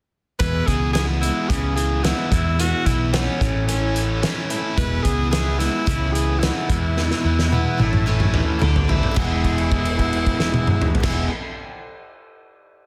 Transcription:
0.39 steel-string acoustic guitar E2 B2 E3 G#3 B3 E4, fingered electric bass E2, tenor saxophone B4, kick, closed hi-hat
0.67 fingered electric bass C#2, overdriven electric guitar E3, tenor saxophone G#4, kick, closed hi-hat
0.93 steel-string acoustic guitar E3 G#3 B3 E4, tenor saxophone G#4, snare, closed hi-hat
1.20 steel-string acoustic guitar E3 G#3 B3 E4, tenor saxophone E4, closed hi-hat
1.48 fingered electric bass C#2, steel-string acoustic guitar C#3 E3 G#3 B3 E4, tenor saxophone G#4, kick, closed hi-hat
1.76 overdriven electric guitar E3, tenor saxophone G#4, closed hi-hat
2.03 steel-string acoustic guitar E3 G#3 B3 E4, tenor saxophone E4, snare, closed hi-hat
2.31 fingered electric bass E2, overdriven electric guitar E2, steel-string acoustic guitar G#3 B3 E4, tenor saxophone E4, kick, closed hi-hat
2.35 steel-string acoustic guitar E3
2.60 steel-string acoustic guitar E2 B2 E3 G#3 B3 E4, tenor saxophone F#4, closed hi-hat
2.85 fingered electric bass B1, overdriven electric guitar E3, tenor saxophone E4, kick, closed hi-hat
3.12 steel-string acoustic guitar E3 G#3, tenor saxophone C#4, snare, closed hi-hat
3.17 steel-string acoustic guitar B3 E4
3.40 fingered electric bass A1, overdriven electric guitar A2, steel-string acoustic guitar C#4 E4, kick, closed hi-hat
3.45 steel-string acoustic guitar A3
3.67 steel-string acoustic guitar A2, tenor saxophone C#4, overdriven electric guitar C#4, closed hi-hat
3.71 steel-string acoustic guitar E3 A3 C#4 E4
3.94 overdriven electric guitar E3, closed hi-hat
4.22 steel-string acoustic guitar E3 A3, overdriven electric guitar C#4, snare, closed hi-hat
4.27 steel-string acoustic guitar C#4 E4
4.50 steel-string acoustic guitar A3 C#4 E4, closed hi-hat
4.77 fingered electric bass E1, steel-string acoustic guitar E2 B2 E3 G#3 B3 E4, accordion E4 B4 G#5, tenor saxophone B4, kick, closed hi-hat
5.03 fingered electric bass C#2, overdriven electric guitar E3, tenor saxophone G#4, kick, closed hi-hat
5.31 steel-string acoustic guitar E3 G#3 B3 E4, tenor saxophone G#4, snare, closed hi-hat
5.58 steel-string acoustic guitar E3 G#3 B3 E4, tenor saxophone E4, snare, closed hi-hat
5.84 fingered electric bass C#2, steel-string acoustic guitar C#3 E3 G#3 B3 E4, accordion C#5 B5, kick, closed hi-hat
6.12 overdriven electric guitar E3, tenor saxophone G#4, closed hi-hat
6.39 steel-string acoustic guitar E3 G#3, tenor saxophone E4, closed hi-hat
6.43 steel-string acoustic guitar B3 E4, snare
6.68 fingered electric bass E2, steel-string acoustic guitar E2 B2 E3 G#3 B3 E4, accordion E4 B4 G#5, kick, closed hi-hat
6.97 overdriven electric guitar E2, snare
7.11 snare
7.24 fingered electric bass E2, overdriven electric guitar E3
7.39 snare
7.51 steel-string acoustic guitar E3 G#3 B3 E4, high tom
7.77 fingered electric bass A1, overdriven electric guitar A2, steel-string acoustic guitar C#4 E4, accordion E4 C#5 A5, high tom
7.82 steel-string acoustic guitar A3
7.93 mid tom
8.06 steel-string acoustic guitar A2 E3 A3 C#4 E4
8.20 mid tom
8.34 overdriven electric guitar E3, mid tom
8.59 fingered electric bass D2, steel-string acoustic guitar D3 A3 D4 E4, accordion D5, mid tom
8.76 floor tom
8.88 steel-string acoustic guitar A3 D4 E4, floor tom
9.03 floor tom
9.11 steel-string acoustic guitar E2 B2
9.16 fingered electric bass E1, overdriven electric guitar E2, accordion E3 B3 G#4, steel-string acoustic guitar E3, tenor saxophone E4, kick, crash
9.20 steel-string acoustic guitar G#3 B3, overdriven electric guitar G#4
9.24 steel-string acoustic guitar E4
9.44 kick, crash
9.58 crash
9.71 kick, crash
9.85 crash
9.99 kick, crash
10.13 crash
10.26 kick, crash
10.40 snare
10.54 high tom
10.67 mid tom
10.82 mid tom
10.95 floor tom
11.00 fingered electric bass E1, steel-string acoustic guitar E2 B2, accordion E3 B3 G#4, kick, snare, crash
11.04 steel-string acoustic guitar E3 G#3, overdriven electric guitar B3 G#4, tenor saxophone E4
11.10 steel-string acoustic guitar B3 E4

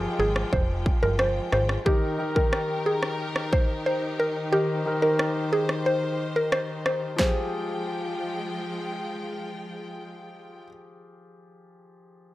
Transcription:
Already playing: string section F3 G#3 F4 G5, grand piano F3 F4 G4 G#4, downlifter
0.19 analog synth bass G#1, synth pluck G#4
0.36 cross-stick
0.53 analog synth bass F1, synth pluck C5, kick
0.86 kick
1.03 analog synth bass G1, synth pluck A#4
1.19 synth pluck C5, cross-stick
1.52 analog synth bass G#1, synth pluck C5, cross-stick
1.69 cross-stick
1.85 grand piano D#3 D#4 G4 A#4, string section D#3 D#4 G4 A#4, synth pluck G4, kick
2.18 grand piano D#3 D#4 G4 A#4
2.35 grand piano D#3 D#4 G4 A#4, synth pluck A#4, kick
2.53 cross-stick
2.86 synth pluck G#4
3.03 cross-stick
3.36 cross-stick
3.53 synth pluck C5, kick
3.86 synth pluck C5
4.20 synth pluck A#4
4.52 grand piano D#3 D#4 G4 A#4, synth pluck G4, string section C5
4.85 grand piano D#3 D#4 G4 A#4
5.02 grand piano D#3 D#4 G4 A#4, synth pluck A#4
5.19 cross-stick
5.53 synth pluck G#4
5.69 cross-stick
5.86 synth pluck C5
6.36 synth pluck A#4
6.52 synth pluck C5, cross-stick
6.86 synth pluck C5, cross-stick
7.16 grand piano F3 F4, string section F3 G#3 F4 G5, synth pluck C5, kick, snare
7.21 grand piano G4 G#4

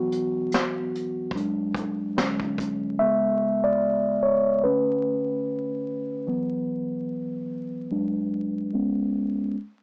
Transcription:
Already playing: tine electric piano E3 F#3 B3 F#4
0.12 closed hi-hat
0.52 snare, closed hi-hat
0.95 closed hi-hat
1.31 tine electric piano F#3, kick
1.36 tine electric piano G#3 D4, closed hi-hat
1.74 kick, closed hi-hat
2.17 tine electric piano D3 F#3 G#3 C#4, snare, closed hi-hat
2.40 kick
2.58 kick, closed hi-hat
2.99 tine electric piano C#3 G#3 B3 E5
3.64 tine electric piano D5
4.23 tine electric piano C#5
4.63 tine electric piano D3 A3 C#4 B4
6.27 tine electric piano E3 F#3 B3
7.91 tine electric piano F#3 G#3 D4
8.73 tine electric piano G#3 B3 C#4

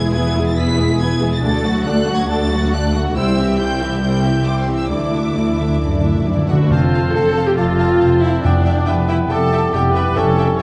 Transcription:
Already playing: double bass section E1, cello section E2, viola section G#3 G#4, french horn section B3 E4, violin section E4 G#4 G#6
0.14 french horn section B3 E4, viola section B3 E4, violin section G#4 B4 G#6
0.36 viola section G#3 G#4, violin section E4 G#4
0.47 violin section A6
0.57 viola section B3 E4, french horn section B3 E4, violin section G#4 B4 B6
0.79 viola section G#3 G#4, violin section E4 G#4
1.01 viola section B3 E4, french horn section B3 E4, violin section G#4 B4 G#6
1.22 viola section G#3 G#4, violin section E4 G#4
1.34 violin section A6
1.43 double bass section D2, cello section D2, viola section A3 D4, french horn section A3 F#4, violin section A4 D5 A6
1.65 viola section F#3 A3, violin section F#4 F#5
1.86 viola section A3 D4, french horn section A3 F#4, violin section A4 D5 F#6
2.09 viola section F#3 A3, violin section F#4 F#5
2.19 violin section G#6
2.30 viola section A3 D4, french horn section A3 F#4, violin section A4 D5 A6
2.52 viola section F#3 A3, violin section F#4 F#5
2.72 french horn section A3 F#4, viola section A3 D4, violin section A4 D5 F#6
2.95 viola section F#3 A3, violin section F#4 F#5
3.15 cello section C2, double bass section C2, viola section G3 E4, french horn section G3 E4, violin section C5 G5 E6
3.38 viola section E3 C4, violin section G4 E5
3.59 viola section G3 E4, french horn section G3 E4, violin section C5 G5 G6
3.82 viola section E3 C4, violin section G4 E5
4.02 viola section G3 E4, french horn section G3 E4, violin section C5 G5 G6
4.25 viola section E3 C4, violin section G4 E5
4.46 viola section G3 E4, violin section C5 G5 D6
4.62 violin section C6
4.68 viola section E3 C4, violin section G4 E5
4.75 violin section E6
4.89 cello section D2, double bass section D2, timpani D3, viola section E3 E4, french horn section A3 E4, violin section D4 D5 D6
4.99 timpani D3
5.07 timpani D3
5.13 timpani D3, viola section A3 D4, violin section E4 E5
5.22 timpani D3
5.30 timpani D3
5.36 cello section D2, viola section E3 E4, violin section D4 D5
5.53 timpani D3
5.59 timpani D3, viola section A3 D4, violin section E4 E5
5.69 timpani D3
5.77 cello section F#2, timpani D3, viola section E3
5.82 timpani D3, violin section D4 D5, viola section E4
5.92 timpani D3
6.01 timpani D3, viola section A3 D4
6.05 timpani D3, violin section E4 E5
6.15 timpani D3
6.22 timpani D3
6.26 cello section F#2, viola section E3 E4, violin section D4 D5
6.30 timpani D3
6.37 timpani D3
6.46 timpani D3, viola section A3 D4 F#4, violin section F#5
6.50 timpani D3, violin section E4 E5
6.61 timpani D3
6.71 double bass section F1, timpani F2, cello section F2, french horn section A3 F4, clarinet C4, viola section F4, oboe C5, violin section F5 A5, flute A5
6.95 violin section F5 A5
7.14 double bass section F1, cello section F2, clarinet C4, viola section A4, violin section F5 A5, flute A5
7.37 violin section F5 A5
7.47 viola section G4, violin section G5
7.57 double bass section F1, cello section F2, clarinet C4, viola section F4, oboe D5, violin section F5 A5, flute A5
7.80 violin section F5 A5
8.01 double bass section F1, cello section F2, oboe C5, violin section F5 A5
8.22 viola section E4, violin section E5 F5 A5
8.44 double bass section F1, cello section F2, timpani F2, french horn section G3 E4, clarinet B3, viola section D4, violin section D5 E5 G5, oboe D5, flute G5
8.65 violin section E5 G5
8.86 double bass section F1, cello section F2, oboe B4, violin section E5 G5
9.08 viola section E4, violin section E5 G5
9.30 double bass section F1, cello section F2, viola section A4, oboe D5, violin section E5 G5 A5
9.53 violin section E5 G5
9.73 double bass section F1, cello section F2, clarinet B3, viola section G4, oboe D5, violin section E5 G5, flute G5
9.94 viola section B4, violin section E5 G5 B5
10.15 double bass section F1, cello section F2, timpani F2, clarinet C#4, viola section A4, oboe C#5, violin section E5 G5 A5, flute G5
10.38 violin section E5 G5
10.59 cello section F2

